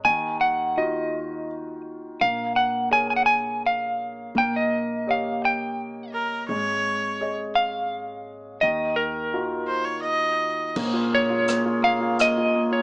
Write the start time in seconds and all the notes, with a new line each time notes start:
0.05 D#2 D#3 G#5
0.41 F#5
0.77 D#4 F4 F#4 D#5
2.21 A#1 A#3 F5
2.56 F#5
2.91 G#4 A#4 C#5 G#5
3.10 G#5
3.16 F#5
3.26 G#5
3.66 F5
4.35 A#1 A#3 G5
4.56 D#5
5.07 G4 C#5 D#5 F5
5.45 G5
6.13 A#4
6.49 G#1 G#3 C#5
7.21 G#4 C#5 D#5
7.55 F5
8.61 D#2 D#3 D#5
8.96 A#4
9.34 D#4 F4 F#4
9.67 C5
9.85 C#5
10.02 D#5
10.75 A#1 G#3 A#3 C#4, kick, crash
10.93 F4
11.12 A#3 C#5
11.30 F4
11.47 A#3, cross-stick, closed hi-hat
11.66 F4
11.83 A#3 F5
12.00 F4
12.19 A#3 D#5, cross-stick, closed hi-hat
12.37 F4
12.55 A#3
12.72 F4 C#5